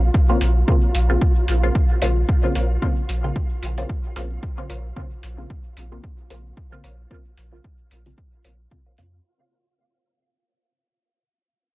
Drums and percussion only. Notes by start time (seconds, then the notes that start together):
0.14 kick
0.41 closed hi-hat
0.68 kick
0.95 closed hi-hat
1.21 kick
1.48 closed hi-hat
1.75 kick
2.02 closed hi-hat
2.29 kick
2.55 closed hi-hat
2.82 kick
3.09 closed hi-hat
3.36 kick
3.63 closed hi-hat
3.78 closed hi-hat
3.89 kick
4.16 closed hi-hat
4.43 kick
4.70 closed hi-hat
4.96 kick
5.23 closed hi-hat
5.50 kick
5.77 closed hi-hat
6.04 kick
6.30 closed hi-hat
6.57 kick
6.84 closed hi-hat
7.11 kick
7.37 closed hi-hat
7.64 kick
7.91 closed hi-hat
8.06 closed hi-hat
8.18 kick
8.45 closed hi-hat
8.71 kick
8.98 closed hi-hat